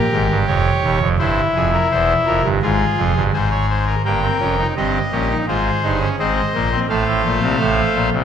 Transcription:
pipe organ
Already playing: G4 A#4
0.12 G#1 G#2
0.30 G1 G2
0.47 F1 F2 C#5
0.83 D#1 D#2
1.00 F1 F2
1.19 G1 G2 E4 C5
1.55 F1 F2 G#4
1.73 A#4
1.91 E1 E2 C5
2.26 F1 F2 A#4
2.43 G1 G2
2.62 G#1 G#2 F4 G#4
2.98 F1 F2
3.16 G1 G2
3.33 G#1 G#2 G#4 C5
3.51 C#5
3.70 C5
3.87 A#4
4.05 G1 G2 A#3 A#4 G5
4.22 C4
4.40 F1 F2 C#4
4.58 D#4
4.76 G1 G2 C4 G4 D#5
5.12 A#1 A#2 C#4 G4
5.30 D#4
5.48 G#1 G#2 F4 G#4 C5
5.83 G1 G2 D#4
6.01 C#4
6.19 G#1 G#2 C4 C5 D#5
6.54 A#1 A#2 A#3
6.72 C4
6.89 A1 A2 A3 C5 F5
7.07 A1 A2
7.24 A#1 A#2
7.42 C2 C3
7.60 A1 A2
7.95 A#1 A#2
8.12 C2 C3

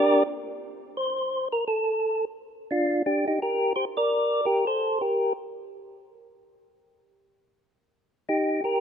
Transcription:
tonewheel organ
Already playing: D4 G4 A#4 D5
0.97 C5
1.52 A#4
1.68 A4
2.71 D4 F4
3.06 D4 G4
3.28 D#4 G4
3.42 G4 A#4
3.76 G4 C5
3.97 A#4 D5
4.45 G4 A#4
4.67 A4 C5
5.01 G4 A#4
8.29 D#4 G4
8.64 G4 A#4

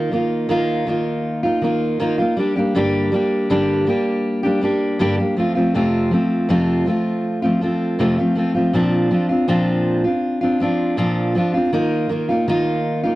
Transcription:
steel-string acoustic guitar
Already playing: D#3 A#3 D#4 F4
0.11 D#3 A#3 D#4 F4
0.49 D#3 A#3 D#4 F4
0.87 D#3 A#3 D#4 F4
1.43 A#3 D#4 F4
1.62 D#3 A#3 D#4 F4
2.00 D#3 A#3 D#4 F4
2.18 A#3 D#4 F4
2.37 G3 A#3 D4 G4
2.56 G3 A#3 D4 G4
2.75 G2 D3 G3 A#3 D4 G4
3.12 G3 A#3 D4 G4
3.50 G2 D3 G3 A#3 D4 G4
3.87 G3 A#3 D4 G4
4.43 G3 A#3 D4 G4
4.61 G3 A#3 D4 G4
4.99 G2 D3 G3 A#3 D4 G4
5.18 G3 A#3 D4 G4
5.37 F3 A3 C4 F4
5.55 F3 A3 C4 F4
5.74 F2 C3 F3 A3 C4 F4
6.11 F3 A3 C4 F4
6.49 F2 C3 F3 A3 C4 F4
6.86 F3 A3 C4 F4
7.42 F3 A3 C4 F4
7.61 F3 A3 C4 F4
7.99 F2 C3 F3 A3 C4 F4
8.17 F3 A3 C4 F4
8.35 F3 A3 C4 F4
8.54 F3 A3 C4 F4
8.73 A#2 F3 C4 D4 F4
9.11 F3 C4 D4 F4
9.29 C4 D4 F4
9.48 A#2 F3 C4 D4 F4
10.04 C4 D4 F4
10.41 C4 D4 F4
10.60 F3 C4 D4 F4
10.97 A#2 F3 C4 D4 F4
11.35 F3 C4 D4 F4
11.54 C4 D4 F4
11.73 D#3 A#3 D#4 F4
12.09 D#3 A#3 D#4 F4
12.29 A#3 D#4 F4
12.48 D#3 A#3 D#4 F4
13.03 A#3 D#4 F4

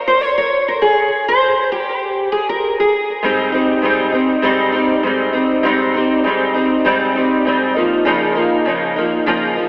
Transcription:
steel-string acoustic guitar
0.08 C5
0.21 C#5
0.38 C#5
0.68 A#4
0.82 G#4
1.28 C5
1.72 G4
2.32 G#4
2.49 A#4
2.80 G#4
3.23 G#2 G3 C4 D#4
3.52 G3 C4 D#4
3.82 G#2 G3 C4 D#4
4.12 G3 C4 D#4
4.42 G#2 G3 C4 D#4
4.72 C4 D#4
4.76 G3
5.03 G#2 G3 C4 D#4
5.33 G3 C4 D#4
5.63 G#2 G3 C4 D#4
5.94 G3 C4 D#4
6.24 G#2 G3 C4 D#4
6.54 G3 C4 D#4
6.85 G#2 G3 C4 D#4
7.15 G3 C4 D#4
7.45 G#2 G3 C4 D#4
7.74 F3 A#3 D#4
8.05 C#3 F3 A#3 D#4
8.35 F3 A#3 D#4
8.65 C#3 F3 A#3 D#4
8.96 F3 A#3 D#4
9.26 C#3 F3 A#3 D#4
9.55 F3 A#3 D#4

